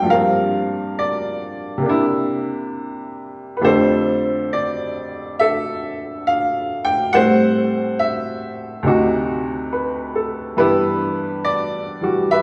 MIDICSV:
0, 0, Header, 1, 2, 480
1, 0, Start_track
1, 0, Tempo, 883652
1, 47, Time_signature, 4, 2, 24, 8
1, 2929, Tempo, 865801
1, 6826, End_track
2, 0, Start_track
2, 0, Title_t, "Upright piano"
2, 0, Program_c, 0, 0
2, 0, Control_c, 0, 64, 127
2, 0, Note_on_c, 0, 45, 40
2, 0, Note_on_c, 0, 51, 37
2, 0, Note_on_c, 0, 55, 37
2, 0, Note_on_c, 0, 60, 37
2, 0, Note_on_c, 0, 70, 56
2, 0, Note_on_c, 0, 75, 74
2, 0, Note_on_c, 0, 76, 60
2, 0, Note_on_c, 0, 77, 81
2, 0, Note_on_c, 0, 79, 80
2, 12, Note_on_c, 0, 43, 42
2, 25, Note_on_c, 0, 53, 38
2, 41, Note_off_c, 0, 55, 0
2, 41, Note_on_c, 0, 55, 38
2, 54, Note_off_c, 0, 70, 0
2, 54, Note_on_c, 0, 70, 57
2, 55, Note_off_c, 0, 77, 0
2, 55, Note_off_c, 0, 79, 0
2, 55, Control_c, 0, 64, 0
2, 55, Note_on_c, 0, 77, 84
2, 56, Note_off_c, 0, 51, 0
2, 56, Note_off_c, 0, 75, 0
2, 58, Note_on_c, 0, 58, 38
2, 59, Note_off_c, 0, 76, 0
2, 60, Note_off_c, 0, 45, 0
2, 60, Note_off_c, 0, 60, 0
2, 73, Note_on_c, 0, 60, 44
2, 139, Control_c, 0, 64, 127
2, 536, Note_off_c, 0, 77, 0
2, 536, Note_on_c, 0, 74, 62
2, 965, Note_on_c, 0, 48, 50
2, 980, Note_off_c, 0, 58, 0
2, 980, Note_off_c, 0, 70, 0
2, 981, Note_off_c, 0, 43, 0
2, 986, Note_off_c, 0, 74, 0
2, 987, Note_off_c, 0, 53, 0
2, 988, Note_on_c, 0, 58, 45
2, 995, Note_off_c, 0, 55, 0
2, 1006, Control_c, 0, 64, 0
2, 1009, Note_on_c, 0, 62, 44
2, 1011, Note_off_c, 0, 60, 0
2, 1028, Note_on_c, 0, 64, 57
2, 1087, Control_c, 0, 64, 127
2, 1938, Note_on_c, 0, 71, 43
2, 1949, Note_off_c, 0, 48, 0
2, 1961, Note_off_c, 0, 58, 0
2, 1962, Note_on_c, 0, 41, 44
2, 1962, Note_on_c, 0, 50, 39
2, 1964, Note_off_c, 0, 71, 0
2, 1966, Note_on_c, 0, 57, 44
2, 1968, Note_on_c, 0, 67, 50
2, 1971, Note_off_c, 0, 62, 0
2, 1973, Control_c, 0, 64, 0
2, 1980, Note_on_c, 0, 72, 65
2, 1981, Note_off_c, 0, 64, 0
2, 1982, Note_on_c, 0, 69, 50
2, 2063, Control_c, 0, 64, 127
2, 2460, Note_on_c, 0, 74, 65
2, 2471, Note_off_c, 0, 72, 0
2, 2913, Note_off_c, 0, 74, 0
2, 2916, Note_off_c, 0, 69, 0
2, 2930, Note_on_c, 0, 76, 74
2, 2938, Note_on_c, 0, 69, 51
2, 3416, Note_on_c, 0, 77, 78
2, 3428, Note_off_c, 0, 76, 0
2, 3489, Note_off_c, 0, 77, 0
2, 3735, Note_on_c, 0, 79, 76
2, 3770, Note_off_c, 0, 79, 0
2, 3877, Note_off_c, 0, 69, 0
2, 3890, Note_off_c, 0, 57, 0
2, 3891, Note_on_c, 0, 78, 86
2, 3893, Note_off_c, 0, 41, 0
2, 3893, Note_on_c, 0, 45, 44
2, 3894, Note_off_c, 0, 50, 0
2, 3896, Note_off_c, 0, 67, 0
2, 3896, Note_on_c, 0, 55, 42
2, 3898, Note_on_c, 0, 57, 41
2, 3902, Note_on_c, 0, 60, 51
2, 3902, Note_on_c, 0, 72, 67
2, 3903, Control_c, 0, 64, 0
2, 3999, Control_c, 0, 64, 127
2, 4352, Note_off_c, 0, 78, 0
2, 4371, Note_on_c, 0, 76, 72
2, 4828, Note_off_c, 0, 76, 0
2, 4833, Note_off_c, 0, 72, 0
2, 4833, Note_on_c, 0, 38, 53
2, 4842, Note_on_c, 0, 48, 47
2, 4851, Note_off_c, 0, 45, 0
2, 4852, Note_off_c, 0, 55, 0
2, 4852, Note_on_c, 0, 63, 47
2, 4853, Note_off_c, 0, 57, 0
2, 4855, Note_off_c, 0, 60, 0
2, 4859, Note_on_c, 0, 66, 61
2, 4860, Control_c, 0, 64, 0
2, 4955, Control_c, 0, 64, 127
2, 5331, Note_on_c, 0, 71, 45
2, 5568, Note_on_c, 0, 69, 42
2, 5714, Note_off_c, 0, 71, 0
2, 5799, Note_on_c, 0, 43, 44
2, 5801, Note_on_c, 0, 52, 43
2, 5804, Note_off_c, 0, 38, 0
2, 5805, Note_on_c, 0, 71, 77
2, 5806, Note_on_c, 0, 59, 39
2, 5808, Note_off_c, 0, 48, 0
2, 5809, Note_on_c, 0, 67, 49
2, 5813, Note_off_c, 0, 63, 0
2, 5813, Note_on_c, 0, 64, 56
2, 5817, Note_off_c, 0, 66, 0
2, 5820, Control_c, 0, 64, 0
2, 5908, Note_off_c, 0, 69, 0
2, 5920, Control_c, 0, 64, 127
2, 6285, Note_on_c, 0, 74, 75
2, 6301, Note_off_c, 0, 71, 0
2, 6590, Note_off_c, 0, 52, 0
2, 6599, Note_on_c, 0, 52, 38
2, 6607, Note_on_c, 0, 55, 36
2, 6612, Note_on_c, 0, 66, 40
2, 6745, Note_off_c, 0, 64, 0
2, 6765, Note_on_c, 0, 76, 75
2, 6771, Note_on_c, 0, 71, 55
2, 6779, Note_off_c, 0, 74, 0
2, 6826, Note_off_c, 0, 43, 0
2, 6826, Note_off_c, 0, 52, 0
2, 6826, Note_off_c, 0, 55, 0
2, 6826, Note_off_c, 0, 59, 0
2, 6826, Note_off_c, 0, 66, 0
2, 6826, Note_off_c, 0, 67, 0
2, 6826, Note_off_c, 0, 71, 0
2, 6826, Note_off_c, 0, 76, 0
2, 6826, End_track
0, 0, End_of_file